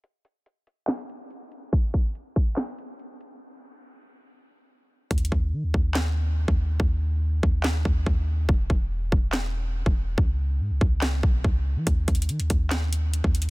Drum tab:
HH |x-----x-----x-----x-----x-----x-----x-----x-----|x-----x-----x-----x-----x-----x-----x-----x-----|------------------------------------------------|x-x-x-------------------------------------------|
CP |------------------------x-----------------------|------------------------x-----------------------|------------------------------------------------|------------------------x-----------------------|
SD |------------------------o-----------------------|------------------------o-----------------------|------------------------------------------------|------------------------o-----------------------|
BD |------------------------------------------------|o-----o-----------o-----------------------------|------------------------------------------------|o-----o-----------o--------------------o--------|

HH |------------------------------------------------|------------------------------------------------|------------------------------------------------|x-----x-x-x-x--x--x-----x-----x-----x-----x-x---|
CP |------------------------x-----------------------|------------------------x-----------------------|------------------------x-----------------------|------------------------x-----------------------|
SD |------------------------o-----------------------|------------------------o-----------------------|------------------------o-----------------------|------------------------o-----------------------|
BD |o-----------------o-----------o-----o-----------|o-----o-----------o--------------------o--------|o-----------------o-----------o-----o-----------|o-----o-----------o--------------------o--------|